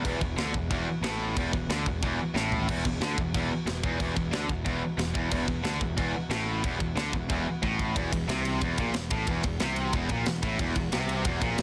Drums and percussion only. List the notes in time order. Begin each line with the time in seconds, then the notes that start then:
0.05 kick, crash
0.21 kick
0.38 snare, crash
0.54 kick
0.71 kick, crash
1.04 snare, crash
1.37 kick, crash
1.53 kick
1.70 snare, crash
1.86 kick
2.02 kick, crash
2.36 snare
2.52 floor tom
2.68 kick, crash
2.85 kick
3.01 snare, crash
3.18 kick
3.34 kick, crash
3.67 snare, crash
3.84 kick
4.00 kick, crash
4.17 kick
4.33 snare, crash
4.49 kick
4.66 kick, crash
4.99 snare, crash
5.15 kick
5.32 kick, crash
5.48 kick
5.64 snare, crash
5.81 kick
5.98 kick, crash
6.31 snare, crash
6.64 kick, crash
6.80 kick
6.97 snare, crash
7.13 kick
7.30 kick, crash
7.63 kick
7.79 kick
7.96 kick, ride
8.13 kick, ride
8.29 snare, ride
8.45 ride
8.61 kick, ride
8.78 kick, ride
8.94 snare, ride
9.10 kick, ride
9.27 kick, ride
9.43 kick, ride
9.60 snare, ride
9.76 ride
9.93 kick, ride
10.09 kick, ride
10.26 snare, ride
10.43 kick, ride
10.59 kick, ride
10.75 kick, ride
10.92 snare, ride
11.09 ride
11.25 kick, ride
11.41 kick, ride
11.58 snare, ride